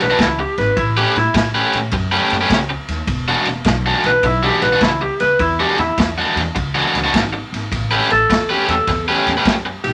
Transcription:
0.00 upright bass B1, electric slide guitar B4, snare, ride
0.10 overdriven electric guitar E3 G#3 D4 F#4
0.18 upright bass C#2, electric slide guitar E4, kick, snare, ride
0.39 electric slide guitar G4, muted overdriven electric guitar stroke
0.58 upright bass G#1, electric slide guitar B4, snare, ride
0.77 upright bass A1, electric slide guitar E4, kick, ride
0.97 overdriven electric guitar A3 C#4 G4 B4, electric slide guitar G4
1.16 upright bass A2, electric slide guitar E4, muted overdriven electric guitar stroke, snare, ride
1.34 upright bass A2, muted overdriven electric guitar stroke, kick, snare, ride
1.55 overdriven electric guitar A3 C#4 G4 B4
1.73 upright bass A2, snare, ride
1.91 upright bass F#2, muted overdriven electric guitar stroke, kick, ride
2.12 overdriven electric guitar A3 C#4 G4 B4
2.30 upright bass F#2, snare, ride
2.41 overdriven electric guitar A3 C#4 G4 B4
2.50 upright bass C#2, kick, snare, ride
2.69 muted overdriven electric guitar stroke
2.88 upright bass D#2, snare, ride
3.07 upright bass E1, kick, ride
3.28 overdriven electric guitar E3 G#3 D4 F#4
3.45 upright bass E1, muted overdriven electric guitar stroke, snare, ride
3.64 upright bass B1, muted overdriven electric guitar stroke, kick, snare, ride
3.86 overdriven electric guitar E3 G#3 D4 F#4
4.03 upright bass B1, electric slide guitar B4, snare, ride
4.23 upright bass B1, electric slide guitar E4, muted overdriven electric guitar stroke, kick, ride
4.43 overdriven electric guitar E3 G#3 D4 F#4, electric slide guitar G4
4.62 upright bass B1, electric slide guitar B4, snare, ride
4.73 overdriven electric guitar E3 G#3 D4 F#4
4.81 upright bass C#2, electric slide guitar E4, kick, snare, ride
5.01 electric slide guitar G4, muted overdriven electric guitar stroke
5.20 upright bass C#2, electric slide guitar B4, snare, ride
5.39 upright bass E2, electric slide guitar E4, kick, ride
5.60 overdriven electric guitar E3 G#3 D4 F#4, electric slide guitar G4
5.78 upright bass E2, electric slide guitar E4, muted overdriven electric guitar stroke, snare, ride
5.98 upright bass E2, muted overdriven electric guitar stroke, kick, snare, ride
6.18 overdriven electric guitar E3 G#3 D4 F#4
6.36 upright bass E2, snare, ride
6.55 upright bass C#2, muted overdriven electric guitar stroke, kick, ride
6.75 overdriven electric guitar E3 G#3 D4 F#4
6.94 upright bass C#2, snare, ride
7.04 overdriven electric guitar E3 G#3 D4 F#4
7.14 upright bass G#1, kick, snare, ride
7.33 muted overdriven electric guitar stroke
7.52 upright bass G#1, snare, ride
7.72 upright bass A1, kick, snare, ride
7.91 overdriven electric guitar A3 C#4 G4 B4
8.10 upright bass A1, electric slide guitar A4, muted overdriven electric guitar stroke, snare, ride
8.30 upright bass E2, muted overdriven electric guitar stroke, kick, snare, ride
8.49 overdriven electric guitar A3 C#4 G4 B4, electric slide guitar G4
8.68 upright bass E2, electric slide guitar A4, snare, ride
8.87 upright bass E2, muted overdriven electric guitar stroke, kick, snare, ride
9.08 overdriven electric guitar A3 C#4 G4 B4, electric slide guitar G4
9.27 upright bass E2, snare, ride
9.37 overdriven electric guitar A3 C#4 G4 B4
9.45 upright bass F#2, kick, snare, ride
9.66 muted overdriven electric guitar stroke
9.84 upright bass B1, electric slide guitar G4, snare, ride

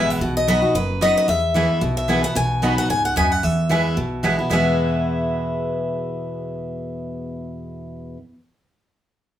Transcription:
Already playing: upright bass A1, steel-string acoustic guitar B2 E3 G#3 B3 E4 E5
0.10 steel-string acoustic guitar F#5
0.21 upright bass B1, steel-string acoustic guitar B2
0.37 steel-string acoustic guitar D#5
0.47 steel-string acoustic guitar F#3 B3 D#4 F#4 D#5, mandolin B3 F#4 D#5 B5
0.62 steel-string acoustic guitar D#4 F#4
0.74 upright bass F#1, steel-string acoustic guitar F#2 B4
1.01 steel-string acoustic guitar F#3 B3 D#4 F#4 D#5, mandolin B3 F#4 D#5 B5
1.17 steel-string acoustic guitar D#5
1.28 steel-string acoustic guitar E2 E5, upright bass E2
1.54 steel-string acoustic guitar E3 G#3 B3 E4, mandolin B3 E4 B4 G#5
1.81 upright bass B1, steel-string acoustic guitar B2
1.97 steel-string acoustic guitar E5
2.08 steel-string acoustic guitar E3 G#3 B3 E4, mandolin B3 E4 B4 G#5
2.23 steel-string acoustic guitar B3 E4 F#5
2.35 upright bass B1, steel-string acoustic guitar B2 G#5
2.62 steel-string acoustic guitar F#3 B3 D#4 F#4, mandolin B3 F#4 D#5 B5
2.78 steel-string acoustic guitar F#5
2.90 upright bass C#2, steel-string acoustic guitar G#2 G#5
3.05 steel-string acoustic guitar F#5
3.16 upright bass D#2, steel-string acoustic guitar F#2 G#5, mandolin B3 F#4 D#5 B5
3.32 steel-string acoustic guitar F#5
3.43 steel-string acoustic guitar E2 E5, upright bass E2
3.69 steel-string acoustic guitar E3 G#3 B3 E4, mandolin B3 E4 B4 G#5
3.97 upright bass B1, steel-string acoustic guitar B2
4.23 steel-string acoustic guitar E3 G#3 B3 E4, mandolin B3 E4 B4 G#5
4.38 steel-string acoustic guitar B3 E4
4.50 steel-string acoustic guitar E2 B2 E3 G#3 B3 E4 E5, upright bass E2, mandolin B3 E4 B4 G#5

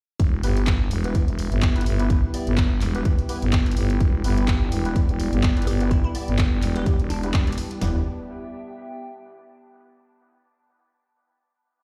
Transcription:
0.20 fm bass E1, analog synth pad G3 B3 E4 B4, ambient pad B3, kick, closed hi-hat
0.43 fm bass G1, synth stab B3 E4 G4 B4, ambient pad E5, open hi-hat
0.48 ambient pad G4
0.57 closed hi-hat
0.67 kick, clap, closed hi-hat
0.91 fm bass E1, open hi-hat
1.04 synth stab B3 E4 G4 B4, closed hi-hat
1.15 kick, closed hi-hat
1.28 fm bass E1, ambient pad G5, closed hi-hat
1.39 open hi-hat
1.52 fm bass G1, closed hi-hat
1.62 kick, clap, closed hi-hat
1.76 synth stab B3 E4 G4 B4, closed hi-hat
1.81 closed hi-hat
1.86 fm bass G1, open hi-hat
1.99 synth stab B3 E4 G4 B4, closed hi-hat
2.10 kick, closed hi-hat
2.34 synth stab B3 E4 G4 D5, open hi-hat
2.47 fm bass G1, closed hi-hat
2.58 kick, clap, closed hi-hat
2.81 fm bass E1, clap, open hi-hat
2.95 synth stab B3 E4 G4 B4, closed hi-hat
3.05 kick, closed hi-hat
3.19 closed hi-hat
3.29 synth stab B3 E4 G4 B4, open hi-hat
3.42 fm bass G1, closed hi-hat
3.53 kick, clap, closed hi-hat
3.66 ambient pad D5, closed hi-hat
3.71 closed hi-hat
3.77 fm bass G1, open hi-hat
3.90 closed hi-hat
4.00 fm bass E1, kick, closed hi-hat
4.24 fm bass G1, synth stab B3 E4 G4 B4, open hi-hat
4.38 closed hi-hat
4.48 kick, clap, closed hi-hat
4.72 fm bass E1, open hi-hat
4.85 synth stab B3 E4 G4 B4, closed hi-hat
4.96 kick, closed hi-hat
5.09 fm bass E1, closed hi-hat
5.20 open hi-hat
5.33 fm bass G1, closed hi-hat
5.43 kick, clap, closed hi-hat
5.57 synth stab B3 E4 G4 B4, closed hi-hat
5.62 closed hi-hat
5.67 fm bass G1, synth pluck G4, open hi-hat
5.80 synth stab B3 E4 G4 B4, closed hi-hat
5.91 synth pluck E4, kick, closed hi-hat
6.04 synth pluck E4
6.15 synth stab B3 E4 G4 D5, open hi-hat
6.28 fm bass G1, closed hi-hat
6.39 kick, clap, closed hi-hat
6.62 fm bass E1, clap, open hi-hat
6.76 synth stab B3 E4 G4 B4, synth pluck G4, closed hi-hat
6.86 kick, closed hi-hat
7.00 fm bass E1, closed hi-hat
7.10 synth pluck D4, open hi-hat
7.23 synth stab B3 E4 G4 B4, closed hi-hat
7.34 fm bass E1, kick, clap, closed hi-hat
7.47 synth stab B3 E4 G4 D5, closed hi-hat
7.52 closed hi-hat
7.58 open hi-hat
7.71 closed hi-hat
7.81 fm bass E1, synth stab B3 E4 G4 B4, ambient pad B3, snare, floor tom
7.90 ambient pad G4
7.97 ambient pad E5
8.03 ambient pad G5

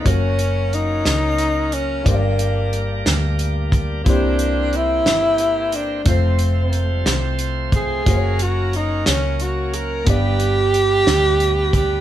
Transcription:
0.02 fingered electric bass F#1, tonewheel organ F#3 A#3 C#4 A#4, grand piano A#3 C#4 F#4, kick, closed hi-hat
0.07 tenor saxophone C#4, grand piano C#5
0.39 closed hi-hat
0.73 tenor saxophone D#4, closed hi-hat
1.05 fingered electric bass C#2, snare, closed hi-hat
1.38 closed hi-hat
1.72 tenor saxophone C#4, closed hi-hat
2.03 fingered electric bass G1, grand piano G2 A#3 D4 G4, tonewheel organ G3 A#3 D4 A4, kick, closed hi-hat
2.07 tenor saxophone A#3, grand piano C5
2.12 tonewheel organ A#4, grand piano D5
2.39 closed hi-hat
2.73 closed hi-hat
3.06 fingered electric bass D2, snare, closed hi-hat
3.39 closed hi-hat
3.72 kick, closed hi-hat
4.04 fingered electric bass C2, grand piano C3 A#3 E4 G4, tonewheel organ E3 A#3 C4 G4, kick, closed hi-hat
4.09 tenor saxophone D4, grand piano C5
4.39 closed hi-hat
4.73 tenor saxophone E4, closed hi-hat
5.06 fingered electric bass G1, snare, closed hi-hat
5.38 closed hi-hat
5.72 tenor saxophone D4, closed hi-hat
6.04 fingered electric bass F1, tonewheel organ F3 A3 C4 C5, grand piano A3 C4 F4, kick, closed hi-hat
6.09 tenor saxophone C4, grand piano C5
6.39 closed hi-hat
6.73 closed hi-hat
7.06 fingered electric bass C2, snare, closed hi-hat
7.39 closed hi-hat
7.72 tenor saxophone G#4, kick, closed hi-hat
8.04 fingered electric bass F#1, tonewheel organ F#3 A#3 C#4 A#4, grand piano A#3 C#4 F#4, kick, closed hi-hat
8.09 grand piano C5
8.16 grand piano C#5
8.39 tenor saxophone F#4, closed hi-hat
8.73 tenor saxophone D#4, closed hi-hat
9.06 fingered electric bass C#2, tenor saxophone C#4, snare, closed hi-hat
9.40 tenor saxophone F#4, closed hi-hat
9.74 tenor saxophone A#4, closed hi-hat
10.05 fingered electric bass G1, grand piano G2 B3 D4 G4, tonewheel organ G3 B3 D4 B4, kick, closed hi-hat
10.09 tenor saxophone G4, grand piano D5
10.40 closed hi-hat
10.74 closed hi-hat
11.07 fingered electric bass D2, snare, closed hi-hat
11.40 closed hi-hat
11.73 tenor saxophone G4, kick, closed hi-hat

